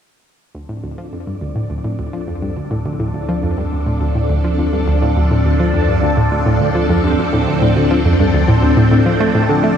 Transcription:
0.55 9.75 D2 medium
0.55 0.63 D2 medium
0.55 9.74 F3 medium
0.55 9.77 C4 medium
0.55 9.74 D4 medium
0.55 9.74 A4 medium
0.55 9.77 D5 medium
0.69 0.82 A2 medium
0.84 0.92 D2 medium
0.98 1.03 F3 medium
1.12 1.25 F2 medium
1.27 1.35 G2 medium
1.41 1.54 D2 medium
1.56 1.61 A2 medium
1.70 1.79 D2 medium
1.85 1.97 A2 medium
1.99 2.08 D2 medium
2.13 2.19 F3 medium
2.28 2.41 F2 medium
2.42 2.51 G2 medium
2.57 2.70 D2 medium
2.71 2.76 A2 medium
2.85 2.94 D2 medium
3.00 3.13 A2 medium
3.14 3.23 D2 medium
3.29 3.34 F3 medium
3.43 3.56 F2 medium
3.57 3.66 G2 medium
3.72 3.85 D2 medium
3.86 3.92 A2 medium
4.01 4.09 D2 medium
4.15 4.28 A2 medium
4.30 4.38 D2 medium
4.44 4.49 F3 medium
4.59 4.71 F2 medium
4.73 4.82 G2 medium
4.88 5.00 D2 medium
5.02 5.07 A2 medium
5.17 5.25 D2 medium
5.31 5.44 A2 medium
5.45 5.54 D2 medium
5.60 5.65 F3 medium
5.74 5.87 F2 medium
5.89 5.97 G2 medium
6.03 6.16 D2 medium
6.17 6.22 A2 medium
6.32 6.40 D2 medium
6.46 6.59 A2 medium
6.61 6.69 D2 medium
6.75 6.80 F3 medium
6.89 7.02 F2 medium
7.04 7.12 G2 medium
7.19 7.31 D2 medium
7.33 7.38 A2 medium
7.47 7.56 D2 medium
7.62 7.75 A2 medium
7.76 7.85 D2 medium
7.91 7.96 F3 medium
8.05 8.18 F2 medium
8.20 8.28 G2 medium
8.34 8.47 D2 medium
8.48 8.53 A2 medium
8.62 8.71 D2 medium
8.77 8.90 A2 medium
8.92 9.00 A2 medium
9.06 9.14 F3 medium
9.20 9.33 A3 medium
9.35 9.47 A2 medium
9.49 9.58 D3 medium
9.64 9.72 A3 medium

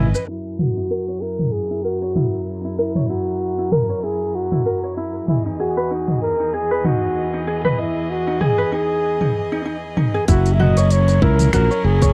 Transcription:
0.00 0.12 G#1 medium
0.00 0.25 E3 medium
0.00 0.25 C#4 medium
0.00 0.25 B4 medium
0.00 0.25 D#5 medium
0.15 0.27 B4 medium
0.15 shaker medium
0.28 5.24 F#2 medium
0.28 5.24 F#3 medium
0.28 0.75 E4 medium
0.28 5.24 E4 medium
0.28 0.61 E4 medium
0.28 5.24 A#4 medium
0.59 1.23 F#4 medium
0.59 mid tom medium
0.77 0.89 E4 medium
0.91 1.07 A#4 medium
1.08 1.21 C#5 medium
1.21 1.69 E4 medium
1.21 1.54 A#4 medium
1.39 mid tom medium
1.52 1.85 G#4 medium
1.71 1.83 E4 medium
1.84 2.47 F#4 medium
1.84 2.00 A#4 medium
2.02 2.15 C#5 medium
2.15 2.63 E4 medium
2.15 mid tom medium
2.65 2.77 E4 medium
2.78 3.11 E4 medium
2.78 2.94 A#4 medium
2.95 3.09 C#5 medium
2.95 mid tom medium
3.09 3.57 E4 medium
3.09 3.74 F#4 medium
3.58 3.71 E4 medium
3.72 3.88 A#4 medium
3.72 4.05 A#4 medium
3.72 mid tom medium
3.89 4.03 C#5 medium
4.03 4.50 E4 medium
4.03 4.37 G#4 medium
4.35 4.97 F#4 medium
4.52 4.64 E4 medium
4.52 mid tom medium
4.66 4.82 A#4 medium
4.83 4.96 C#5 medium
4.97 5.28 E4 medium
5.28 10.25 E2 medium
5.28 10.25 E3 medium
5.28 5.43 E4 medium
5.28 10.24 G#4 medium
5.28 10.25 D#5 medium
5.28 mid tom medium
5.46 5.58 D#4 medium
5.60 6.18 F#4 medium
5.60 5.75 G#4 medium
5.77 5.90 B4 medium
5.91 6.38 D#4 medium
6.08 mid tom medium
6.22 6.55 A#4 medium
6.40 6.52 D#4 medium
6.53 6.69 G#4 medium
6.53 6.86 G#4 loud
6.71 6.84 B4 medium
6.84 7.32 D#4 medium
6.84 7.47 F#4 medium
6.84 mid tom medium
7.34 7.46 D#4 medium
7.47 7.63 G#4 medium
7.65 7.78 B4 medium
7.65 mid tom medium
7.78 8.12 E4 medium
7.78 8.25 D#5 medium
8.10 8.43 F#4 medium
8.27 8.40 D#4 medium
8.41 8.57 G#4 medium
8.41 8.72 G#4 medium
8.41 mid tom medium
8.58 8.71 B4 medium
8.72 9.19 D#4 medium
8.72 9.62 G#4 loud
9.21 9.33 D#4 medium
9.21 mid tom medium
9.52 9.64 D#4 medium
9.65 9.76 D#4 medium
9.97 10.13 D#4 medium
9.97 mid tom medium
10.14 10.27 G#4 medium
10.28 11.19 F#1 medium
10.28 12.13 F#3 medium
10.28 12.13 C#4 medium
10.28 10.58 E4 medium
10.28 12.13 E4 medium
10.28 10.55 F#4 loud
10.28 12.13 A#4 medium
10.28 kick loud
10.28 closed hi-hat medium
10.28 shaker medium
10.46 closed hi-hat soft
10.46 shaker soft
10.53 10.62 E5 medium
10.59 10.75 F#4 loud
10.59 10.93 D#5 loud
10.59 mid tom medium
10.77 11.07 C#5 medium
10.77 closed hi-hat soft
10.77 shaker medium
10.90 11.24 C#5 loud
10.90 closed hi-hat medium
10.90 shaker medium
11.08 11.21 C#5 medium
11.08 closed hi-hat soft
11.08 shaker soft
11.22 11.49 C#2 loud
11.22 11.52 E4 medium
11.22 11.53 A#4 loud
11.22 kick loud
11.39 closed hi-hat soft
11.39 mid tom medium
11.39 shaker medium
11.53 11.68 A#1 medium
11.53 11.69 F#4 loud
11.53 11.87 A#4 loud
11.53 finger snap medium
11.53 kick medium
11.53 closed hi-hat medium
11.53 shaker medium
11.71 12.00 C#5 medium
11.71 shaker soft
11.84 12.13 F#1 medium
11.84 12.13 G#4 loud
12.02 12.13 C#5 medium
12.02 kick medium
12.02 closed hi-hat soft
12.02 shaker medium

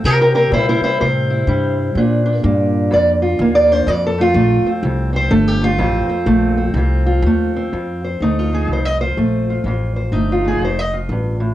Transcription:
0.04 0.51 C3 loud
0.04 0.99 C3 medium
0.04 0.20 G4 loud
0.04 0.20 A#4 loud
0.21 0.34 G4 medium
0.21 0.34 A#4 medium
0.35 0.83 C4 medium
0.35 0.52 G4 medium
0.35 0.52 A#4 medium
0.52 0.79 A#2 medium
0.52 0.68 E4 medium
0.52 0.68 C5 loud
0.56 1.47 G3 medium
0.69 0.82 E4 medium
0.69 0.82 C5 loud
0.81 1.95 C4 soft
0.81 1.00 E4 medium
0.81 0.99 C5 loud
0.81 muted upright bass stroke soft
1.00 1.47 A2 medium
1.00 1.94 C3 medium
1.00 2.44 C5 loud
1.30 1.94 E4 soft
1.47 1.94 G2 loud
1.47 1.94 G3 medium
1.95 2.42 A#2 loud
1.95 2.93 A#2 medium
1.95 2.24 D4 medium
2.25 3.69 D4 medium
2.43 2.91 G2 loud
2.43 3.40 A#3 medium
2.91 3.87 F2 medium
2.91 3.38 F2 medium
2.91 3.09 D5 loud
3.22 3.55 F4 medium
3.39 3.86 D#2 loud
3.39 3.87 A#3 medium
3.55 3.72 D5 loud
3.71 3.87 D4 medium
3.71 3.88 C5 loud
3.87 4.34 F2 loud
3.87 4.84 F2 medium
3.87 4.04 D5 loud
4.06 4.21 A4 loud
4.18 4.35 A3 medium
4.18 4.69 F4 loud
4.34 4.62 A#1 loud
4.34 5.30 A3 medium
4.63 5.12 C4 medium
4.63 muted upright bass stroke soft
4.83 5.30 C2 medium
4.83 5.79 F2 medium
5.13 5.30 C4 medium
5.13 5.32 C5 loud
5.31 5.78 G1 loud
5.31 5.61 A3 medium
5.31 5.48 A4 loud
5.48 5.64 G4 loud
5.61 6.27 A3 medium
5.61 6.60 F4 loud
5.78 6.06 A1 loud
5.78 6.75 F2 medium
5.78 6.08 C4 medium
6.08 6.56 C4 medium
6.08 muted upright bass stroke soft
6.26 6.73 A#1 loud
6.26 7.24 A3 medium
6.57 7.54 C4 medium
6.74 7.22 C2 medium
6.74 7.72 F2 medium
6.74 7.05 F4 medium
7.06 8.04 F4 medium
7.22 7.70 D#2 loud
7.22 7.71 A3 medium
7.56 8.54 C4 soft
7.73 8.71 F2 medium
7.73 8.19 F2 medium
8.05 8.39 C5 soft
8.21 8.67 D2 medium
8.21 8.52 A3 medium
8.21 8.86 D#4 medium
8.39 8.70 F4 medium
8.53 9.16 A3 soft
8.53 8.70 G#4 medium
8.68 9.15 C2 medium
8.68 9.65 F2 medium
8.73 8.85 C5 medium
8.85 9.00 D#5 medium
9.01 9.50 F4 soft
9.01 9.95 C5 medium
9.17 9.63 A#1 medium
9.17 9.63 A3 medium
9.50 9.67 F4 soft
9.64 10.11 A1 medium
9.64 10.61 F2 medium
9.64 10.12 F4 soft
9.96 10.30 C5 soft
10.12 10.58 G1 medium
10.12 10.44 A3 medium
10.12 10.78 D#4 medium
10.32 10.63 F4 medium
10.45 11.54 A3 soft
10.45 10.63 G#4 medium
10.59 11.07 F1 medium
10.59 11.10 F2 medium
10.64 10.79 C5 medium
10.79 10.94 D#5 medium
10.93 11.54 F4 soft
11.09 11.54 A1 medium
11.09 11.40 G2 medium
11.40 11.54 A2 medium

